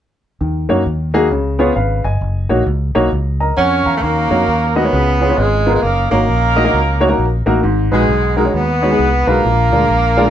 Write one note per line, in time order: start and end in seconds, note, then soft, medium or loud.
0.41 0.65 D#2 medium
0.41 1.10 D#3 medium
0.69 0.83 F#2 medium
0.69 0.81 A#3 medium
0.69 0.81 D#4 medium
0.69 0.81 F#4 medium
0.69 0.81 C#5 medium
0.86 1.31 D#2 medium
1.14 1.26 A#3 medium
1.14 1.26 D#4 medium
1.14 1.26 F#4 medium
1.14 1.27 G#4 loud
1.31 1.70 C#2 loud
1.31 2.01 C#3 medium
1.59 1.71 B3 medium
1.59 1.71 F4 medium
1.59 1.72 G#4 medium
1.59 1.72 C#5 medium
1.76 2.01 G#1 medium
1.76 2.03 B4 medium
1.76 2.03 F5 medium
2.04 2.19 G1 medium
2.04 2.48 D#5 soft
2.04 2.48 G#5 medium
2.21 2.45 F#1 medium
2.49 2.64 A#1 medium
2.49 2.62 A#3 medium
2.49 2.62 D#4 medium
2.49 2.62 F#4 medium
2.49 2.62 C#5 medium
2.66 2.91 C#2 medium
2.95 3.10 B1 medium
2.95 3.07 A#3 medium
2.95 3.07 D#4 medium
2.95 3.07 F#4 medium
2.95 3.07 C#5 medium
3.12 3.51 C#2 medium
3.40 3.57 A#4 medium
3.40 3.56 D#5 medium
3.40 3.56 A#5 medium
3.57 3.82 F2 medium
3.57 3.94 C#4 loud
3.57 3.99 C#4 medium
3.57 4.00 A#4 medium
3.57 3.99 C#5 medium
3.57 3.85 C#5 medium
3.57 3.99 F#5 medium
3.86 4.00 E2 medium
3.86 4.29 F5 soft
3.86 4.29 A#5 medium
3.97 4.04 A3 medium
4.02 4.27 D#2 medium
4.02 4.72 D#3 medium
4.02 4.67 A#3 loud
4.02 4.76 A#3 medium
4.02 4.89 C#4 medium
4.02 4.89 F#4 medium
4.02 4.76 A#4 medium
4.30 4.45 F2 medium
4.30 4.43 A#3 medium
4.30 4.43 D#4 medium
4.30 4.43 F#4 medium
4.30 4.43 C#5 medium
4.48 4.86 D#2 medium
4.67 4.78 A#3 medium
4.76 4.82 A#3 medium
4.76 5.34 B3 medium
4.76 5.40 B3 loud
4.76 4.82 D#4 medium
4.76 5.38 F4 medium
4.76 4.82 F#4 medium
4.76 5.38 G#4 medium
4.76 5.34 B4 medium
4.76 4.82 D#5 medium
4.84 4.93 A#3 medium
4.84 4.93 D#4 medium
4.84 4.93 F#4 soft
4.84 4.93 C#5 medium
4.93 5.31 C#2 loud
4.93 5.63 C#3 medium
5.21 5.27 B3 medium
5.21 5.27 F4 medium
5.21 5.27 G#4 medium
5.21 5.27 C#5 medium
5.30 5.44 B3 medium
5.30 5.44 F4 medium
5.30 5.45 G#4 medium
5.30 5.45 C#5 medium
5.38 5.76 G#1 medium
5.38 5.74 G#3 medium
5.38 5.81 B3 medium
5.38 5.81 F4 medium
5.38 5.74 G#4 medium
5.66 5.78 B3 medium
5.66 5.79 F4 medium
5.66 5.79 G#4 medium
5.66 5.79 A#4 medium
5.75 5.84 G#3 medium
5.75 5.83 G#3 medium
5.75 5.83 G#4 medium
5.83 6.07 F#1 medium
5.83 6.11 A#3 loud
5.83 6.10 A#3 medium
5.83 6.10 C#4 medium
5.83 6.10 D#4 medium
5.83 6.10 A#4 medium
6.11 6.26 G#1 medium
6.11 6.23 A#3 medium
6.11 7.43 A#3 medium
6.11 7.43 C#4 medium
6.11 6.24 D#4 medium
6.11 7.43 D#4 medium
6.11 6.24 F#4 medium
6.11 7.43 A#4 loud
6.11 6.24 C#5 medium
6.28 6.67 A#1 medium
6.56 6.62 A#3 medium
6.56 6.63 D#4 medium
6.56 6.63 F#4 medium
6.56 6.63 D#5 medium
6.64 6.79 A#3 medium
6.64 6.79 D#4 medium
6.64 6.79 F#4 medium
6.64 6.80 D#5 medium
6.73 7.12 C#2 medium
7.00 7.07 A#3 medium
7.00 7.07 D#4 medium
7.00 7.07 F#4 medium
7.00 7.08 C#5 medium
7.09 7.24 A#3 medium
7.09 7.24 D#4 medium
7.09 7.24 F#4 medium
7.09 7.24 A#4 medium
7.18 7.42 A#1 medium
7.46 7.61 A1 medium
7.46 7.59 A#3 medium
7.46 7.59 D#4 medium
7.46 7.59 F#4 medium
7.46 7.59 A#4 medium
7.63 7.88 G#1 loud
7.63 8.33 G#2 medium
7.91 8.06 A#1 medium
7.91 8.04 G#3 medium
7.91 8.34 G#3 medium
7.91 8.35 G#3 medium
7.91 8.54 B3 medium
7.91 8.04 D#4 medium
7.91 8.54 D#4 medium
7.91 8.04 F#4 medium
7.91 8.34 G#4 medium
7.91 8.04 B4 medium
8.09 8.47 B1 loud
8.36 8.43 G#3 medium
8.36 8.53 G#3 medium
8.36 8.56 G#3 medium
8.36 8.43 D#4 medium
8.36 8.43 F#4 medium
8.36 8.53 G#4 medium
8.36 8.43 A#4 medium
8.45 8.60 G#3 medium
8.45 8.60 D#4 medium
8.45 8.60 F#4 medium
8.45 8.60 C#5 medium
8.54 8.92 D#2 medium
8.54 9.28 B3 medium
8.54 9.30 B3 loud
8.54 9.41 D#4 medium
8.54 9.40 F#4 medium
8.54 9.28 B4 loud
8.82 8.88 G#3 medium
8.82 8.88 D#4 medium
8.82 8.88 F#4 medium
8.82 8.89 C#5 medium
8.90 9.05 G#3 medium
8.90 9.05 D#4 medium
8.90 9.05 F#4 soft
8.90 9.05 G#4 medium
8.99 9.23 C2 medium
9.27 9.42 B1 medium
9.27 9.39 G#3 medium
9.27 10.30 A#3 medium
9.27 10.30 D4 medium
9.27 9.39 D#4 medium
9.27 10.30 F4 medium
9.27 9.39 F#4 medium
9.27 10.30 A#4 loud
9.27 9.39 B4 medium
9.44 9.73 A#1 medium
9.44 10.14 A#2 medium
9.72 9.87 D2 medium
9.72 9.84 G#3 medium
9.72 9.84 D4 medium
9.72 9.85 F4 medium
9.72 9.85 A#4 medium
9.90 10.28 A#1 medium
10.17 10.23 G#3 medium
10.17 10.23 D4 medium
10.17 10.24 F4 medium
10.17 10.24 A#4 medium
10.25 10.30 G#3 medium
10.25 10.30 D4 medium
10.25 10.30 F4 medium
10.25 10.30 G#4 medium